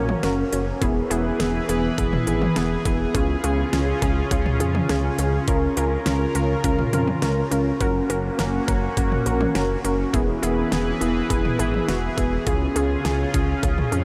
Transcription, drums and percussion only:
0.09 mid tom
0.23 snare, closed hi-hat
0.53 closed hi-hat
0.82 kick, closed hi-hat
1.11 closed hi-hat
1.40 snare, closed hi-hat
1.69 closed hi-hat
1.98 kick, closed hi-hat
2.13 mid tom
2.27 closed hi-hat
2.42 mid tom
2.56 snare, closed hi-hat
2.85 kick, closed hi-hat
3.15 kick, closed hi-hat
3.44 closed hi-hat
3.73 snare, closed hi-hat
4.02 kick, closed hi-hat
4.31 kick, closed hi-hat
4.46 mid tom
4.60 closed hi-hat
4.75 mid tom
4.89 snare, closed hi-hat
5.19 closed hi-hat
5.48 kick, closed hi-hat
5.77 closed hi-hat
6.06 snare, closed hi-hat
6.35 closed hi-hat
6.64 kick, closed hi-hat
6.79 mid tom
6.93 closed hi-hat, mid tom
7.07 mid tom
7.22 snare, closed hi-hat
7.52 closed hi-hat
7.80 kick, closed hi-hat
8.10 closed hi-hat
8.39 snare, closed hi-hat
8.68 kick, closed hi-hat
8.97 kick, closed hi-hat
9.12 mid tom
9.26 closed hi-hat
9.41 mid tom
9.55 snare, closed hi-hat
9.85 closed hi-hat
10.14 kick, closed hi-hat
10.43 closed hi-hat
10.72 snare, closed hi-hat
11.01 closed hi-hat
11.30 kick, closed hi-hat
11.45 mid tom
11.59 closed hi-hat
11.74 mid tom
11.89 snare, closed hi-hat
12.18 kick, closed hi-hat
12.47 kick, closed hi-hat
12.76 closed hi-hat
13.05 snare, closed hi-hat
13.34 kick, closed hi-hat
13.63 kick, closed hi-hat
13.78 mid tom
13.92 closed hi-hat

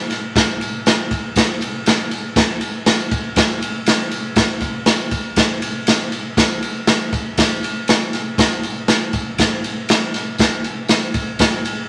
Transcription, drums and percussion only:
0.10 snare, ride, tambourine
0.36 kick, snare, ride, tambourine
0.61 ride, tambourine
0.86 snare, ride, tambourine
1.11 kick, ride, tambourine
1.36 kick, snare, ride, tambourine
1.61 ride, tambourine
1.86 snare, ride, tambourine
2.11 ride, tambourine
2.36 kick, snare, ride, tambourine
2.61 ride, tambourine
2.86 snare, ride, tambourine
3.11 kick, ride, tambourine
3.36 kick, snare, ride, tambourine
3.62 ride, tambourine
3.86 snare, ride, tambourine
4.11 ride, tambourine
4.36 kick, snare, ride, tambourine
4.60 kick, ride, tambourine
4.86 snare, ride, tambourine
5.11 kick, ride, tambourine
5.36 kick, snare, ride, tambourine
5.62 ride, tambourine
5.87 snare, ride, tambourine
6.12 ride, tambourine
6.37 kick, snare, ride, tambourine
6.62 ride, tambourine
6.87 snare, ride, tambourine
7.13 kick, ride, tambourine
7.38 kick, snare, ride, tambourine
7.63 ride, tambourine
7.88 snare, ride, tambourine
8.13 snare, ride, tambourine
8.38 kick, snare, ride, tambourine
8.63 ride, tambourine
8.88 snare, ride, tambourine
9.13 kick, ride, tambourine
9.38 kick, snare, ride, tambourine
9.64 ride, tambourine
9.89 snare, ride, tambourine
10.14 snare, ride, tambourine
10.38 kick, snare, ride, tambourine
10.64 ride, tambourine
10.88 snare, ride, tambourine
11.14 kick, ride, tambourine
11.39 kick, snare, ride, tambourine
11.65 ride, tambourine

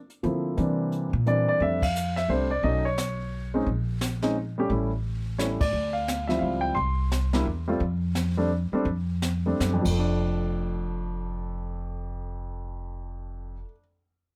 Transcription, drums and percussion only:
0.10 closed hi-hat
0.23 closed hi-hat
0.57 closed hi-hat
0.92 closed hi-hat
1.26 closed hi-hat
1.61 brush sweep, kick
1.82 kick, ride
1.95 hi-hat pedal
2.17 snare
2.64 brush sweep, kick
2.98 snare, hi-hat pedal
3.67 brush sweep, kick
4.01 snare, hi-hat pedal
4.22 snare
4.70 brush sweep, kick
5.39 snare, hi-hat pedal
5.61 kick, ride
5.74 brush sweep
6.08 snare, hi-hat pedal
6.30 snare
6.77 brush sweep, kick
7.12 snare, hi-hat pedal
7.33 snare
7.80 brush sweep, kick
8.15 snare, hi-hat pedal
8.86 brush sweep, kick
9.22 snare, hi-hat pedal
9.60 snare, hi-hat pedal
9.85 kick, crash

